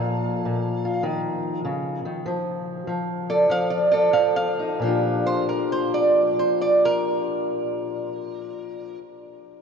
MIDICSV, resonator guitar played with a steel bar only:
0, 0, Header, 1, 2, 480
1, 0, Start_track
1, 0, Key_signature, -2, "major"
1, 0, Tempo, 588813
1, 1332, Tempo, 617284
1, 1802, Time_signature, 4, 2, 24, 8
1, 2772, Tempo, 657174
1, 3732, Tempo, 676437
1, 7151, End_track
2, 0, Start_track
2, 0, Title_t, "Resonator guitar played with a steel bar"
2, 0, Program_c, 0, 25
2, 0, Note_on_c, 0, 77, 89
2, 982, Note_off_c, 0, 77, 0
2, 2625, Note_on_c, 0, 74, 79
2, 2776, Note_off_c, 0, 74, 0
2, 2791, Note_on_c, 0, 77, 86
2, 2930, Note_on_c, 0, 74, 73
2, 2933, Note_off_c, 0, 77, 0
2, 3077, Note_off_c, 0, 74, 0
2, 3086, Note_on_c, 0, 74, 83
2, 3240, Note_off_c, 0, 74, 0
2, 3244, Note_on_c, 0, 77, 84
2, 3400, Note_off_c, 0, 77, 0
2, 3413, Note_on_c, 0, 77, 95
2, 3725, Note_off_c, 0, 77, 0
2, 4062, Note_on_c, 0, 72, 83
2, 4212, Note_off_c, 0, 72, 0
2, 4220, Note_on_c, 0, 70, 67
2, 4371, Note_off_c, 0, 70, 0
2, 4386, Note_on_c, 0, 72, 77
2, 4534, Note_off_c, 0, 72, 0
2, 4542, Note_on_c, 0, 74, 78
2, 4847, Note_off_c, 0, 74, 0
2, 4862, Note_on_c, 0, 72, 79
2, 5012, Note_off_c, 0, 72, 0
2, 5020, Note_on_c, 0, 74, 80
2, 5171, Note_off_c, 0, 74, 0
2, 5188, Note_on_c, 0, 70, 90
2, 6696, Note_off_c, 0, 70, 0
2, 7151, End_track
0, 0, End_of_file